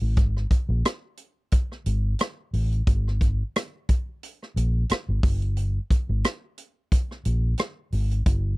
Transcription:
0.02 fingered electric bass A1
0.17 fingered electric bass G#1, kick, closed hi-hat
0.37 cross-stick
0.51 kick, closed hi-hat
0.69 fingered electric bass A#1
0.85 cross-stick, closed hi-hat
1.17 closed hi-hat
1.52 kick, closed hi-hat
1.72 cross-stick
1.86 fingered electric bass G#1, closed hi-hat
2.19 cross-stick, closed hi-hat
2.53 fingered electric bass A1, open hi-hat
2.72 closed hi-hat
2.87 fingered electric bass G#1, kick, closed hi-hat
3.08 cross-stick
3.21 kick, closed hi-hat
3.56 cross-stick, closed hi-hat
3.89 kick, closed hi-hat
4.23 closed hi-hat
4.43 cross-stick
4.56 fingered electric bass A#1, closed hi-hat
4.89 muted fingered electric bass stroke, cross-stick, closed hi-hat
5.09 fingered electric bass G#1
5.23 fingered electric bass G1, kick, open hi-hat
5.42 closed hi-hat
5.57 closed hi-hat
5.91 kick, closed hi-hat
6.09 fingered electric bass G#1
6.24 cross-stick, closed hi-hat
6.58 closed hi-hat
6.92 kick, closed hi-hat
7.11 cross-stick
7.25 fingered electric bass A#1, closed hi-hat
7.58 cross-stick, closed hi-hat
7.92 fingered electric bass G#1, open hi-hat
8.11 closed hi-hat
8.26 fingered electric bass G1, kick, closed hi-hat

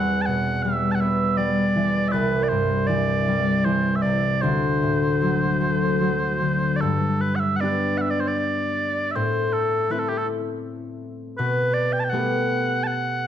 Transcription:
Already playing: harp E2 C4 E4, bagpipes F#5
0.21 bagpipes A5
0.26 harp B2, bagpipes F#5
0.63 harp G3, bagpipes E5
0.91 bagpipes F#5 A5
1.01 harp B3, bagpipes E5
1.37 harp G3, bagpipes D5
1.76 harp E3
2.08 bagpipes B4 E5
2.13 harp C2
2.43 bagpipes D5
2.49 harp G2, bagpipes C5
2.87 harp E3, bagpipes D5
3.28 harp G3
3.65 harp E3, bagpipes C5
3.96 bagpipes E5
4.02 harp C3, bagpipes D5
4.41 harp D2, bagpipes C5
4.83 harp A2
5.22 harp F#3
5.61 harp A3
6.01 harp F#3
6.41 harp D3
6.76 bagpipes D5
6.81 harp G2, bagpipes A4
7.21 bagpipes B4
7.36 bagpipes F#5
7.40 bagpipes E5
7.56 harp B3, bagpipes F#5
7.61 harp D4 G4, bagpipes D5
7.98 bagpipes E5 F#5
8.11 bagpipes D5
8.20 bagpipes C5
8.28 bagpipes D5
8.38 bagpipes D5
9.11 bagpipes E5
9.15 harp A2, bagpipes C5
9.53 bagpipes A4
9.90 harp A3 C4 E4, bagpipes B4
9.99 bagpipes A4
10.09 bagpipes G4
10.18 bagpipes A4
11.38 harp B2, bagpipes B4
11.74 bagpipes D5
11.93 bagpipes G5
12.00 bagpipes A5
12.04 bagpipes G5
12.10 harp A3 B3, bagpipes F#5
12.14 harp G4
12.83 bagpipes F#5 A5

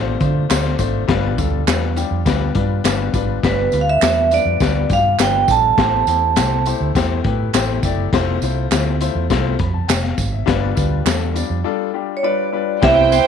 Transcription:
Already playing: fingered electric bass A1, grand piano A3 D4 F4 C5
0.19 fingered electric bass D3, grand piano A3 D4 F4 C5, kick, closed hi-hat, tambourine
0.49 fingered electric bass D2, grand piano A3 D4 F4 C5, snare, clap, closed hi-hat, tambourine
0.65 snare
0.78 fingered electric bass G#1, grand piano A3 D4 F4 C5, kick, closed hi-hat, tambourine
1.08 fingered electric bass G1, grand piano G3 D4 F4 B4, kick, snare, closed hi-hat
1.37 fingered electric bass D2, grand piano G3 D4 F4 A4, kick, closed hi-hat, tambourine
1.67 fingered electric bass E2, grand piano G3 D4 F4 B4, snare, clap, closed hi-hat, tambourine
1.96 grand piano G3 D4 F4 G4, closed hi-hat, tambourine
2.11 fingered electric bass F2
2.25 fingered electric bass D2, grand piano G3 D4 F4 B4, kick, snare, closed hi-hat, tambourine
2.55 fingered electric bass G2, grand piano G3 D4 F4 B4, kick, closed hi-hat
2.84 fingered electric bass G1, grand piano G3 D4 F4 B4, snare, clap, closed hi-hat, tambourine
3.13 fingered electric bass G#1, grand piano G3 D4 F4 B4, kick, closed hi-hat, tambourine
3.43 fingered electric bass G1, grand piano G3 D4 F4 B4, vibraphone B4, kick, snare, closed hi-hat, tambourine
3.72 fingered electric bass D2, grand piano G3 D4 F4 B4, closed hi-hat, tambourine
3.81 vibraphone F5
3.89 vibraphone E5
4.02 fingered electric bass E2, grand piano G3 D4 F4 B4, snare, clap, closed hi-hat, tambourine
4.31 grand piano G3 D4 F4 B4, vibraphone D5, closed hi-hat, tambourine
4.45 fingered electric bass F2
4.60 fingered electric bass D2, grand piano G3 D4 F4 B4, kick, snare, closed hi-hat, tambourine
4.90 fingered electric bass G2, grand piano G3 D4 F4 G4, vibraphone F5, kick, closed hi-hat, tambourine
5.19 fingered electric bass G1, grand piano G3 D4 F4 B4, vibraphone G5, snare, clap, closed hi-hat, tambourine
5.48 fingered electric bass A#1, grand piano G3 D4 F4 A4, vibraphone A5, kick, closed hi-hat, tambourine
5.78 fingered electric bass A1, grand piano A3 E4 G4 C5, kick, snare, closed hi-hat, tambourine
6.07 fingered electric bass E2, grand piano A3 E4 G4 C5, closed hi-hat, tambourine
6.36 fingered electric bass C2, grand piano A3 E4 G4 C5, snare, clap, closed hi-hat, tambourine
6.66 grand piano A3 E4 G4 C5, closed hi-hat, tambourine
6.81 fingered electric bass D2
6.95 fingered electric bass E2, grand piano A3 E4 G4 C5, kick, snare, closed hi-hat, tambourine
7.24 fingered electric bass A2, grand piano A3 E4 G4 B4, kick, closed hi-hat
7.53 fingered electric bass A1, grand piano A3 E4 G4 C5, snare, clap, closed hi-hat, tambourine
7.83 fingered electric bass F#1, grand piano A3 E4 G4 D5, kick, closed hi-hat, tambourine
8.13 fingered electric bass F1, grand piano A3 E4 F4 C5, kick, snare, closed hi-hat, tambourine
8.42 fingered electric bass C2, grand piano A3 E4 F4 C5, closed hi-hat, tambourine
8.71 fingered electric bass D2, grand piano A3 E4 F4 C5, snare, clap, closed hi-hat, tambourine
9.01 grand piano A3 E4 F4 C5, closed hi-hat, tambourine
9.15 fingered electric bass E2
9.30 fingered electric bass C2, grand piano A3 E4 F4 C5, kick, snare, closed hi-hat, tambourine
9.59 fingered electric bass F2, grand piano B5, kick, closed hi-hat
9.74 grand piano A5
9.88 fingered electric bass F1, grand piano G5, snare, clap, closed hi-hat, tambourine
10.03 grand piano F5, snare
10.18 fingered electric bass G#1, kick, closed hi-hat, tambourine
10.32 grand piano E5
10.46 fingered electric bass G1, grand piano G3 D4 F4 B4, kick, snare, closed hi-hat, tambourine
10.75 fingered electric bass D2, grand piano G3 D4 F4 B4, kick, closed hi-hat, tambourine
11.05 fingered electric bass E2, grand piano G3 D4 F4 A4, snare, clap, closed hi-hat, tambourine
11.34 grand piano G3 D4 F4 D5, closed hi-hat, tambourine
11.50 fingered electric bass F2
11.64 grand piano G3 D4 F4 A4
11.94 grand piano G3 D4 F4 G4
12.17 vibraphone C#5
12.23 grand piano G3 D4 F4 B4, vibraphone D5
12.52 grand piano G3 D4 F4 B4
12.82 fingered electric bass C2, grand piano B3 C4 E4 G4 C5, string section E4 C5 G5, vibraphone E5, kick, snare, closed hi-hat
13.12 grand piano B3 C4 E4 G4 C5, vibraphone C5, closed hi-hat, tambourine

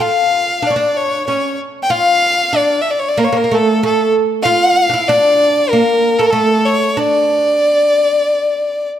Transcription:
0.00 oud F4, violin F5
0.62 oud D4
0.67 oud C#4, violin D5
0.76 oud D4
0.96 violin C#5
1.27 oud C#4, violin C#5
1.83 violin G5
1.90 oud F4, violin F5
2.53 oud D4, violin D5
2.81 violin E5
2.90 violin D5
2.99 violin C#5
3.08 violin D5
3.17 oud A#3, violin A#4
3.24 violin C#5
3.33 oud A#3
3.37 violin A#4
3.44 oud A#3
3.51 oud A3, violin A4
3.83 oud A3, violin A4
4.43 oud F4, violin F5
4.89 oud D4
4.94 oud E4
5.07 oud D4, violin D5
5.69 oud A#3, violin A#4
6.19 oud A3, violin A4
6.26 violin A#4
6.30 oud A3, violin A4
6.65 violin C#5
6.97 oud D4, violin D5

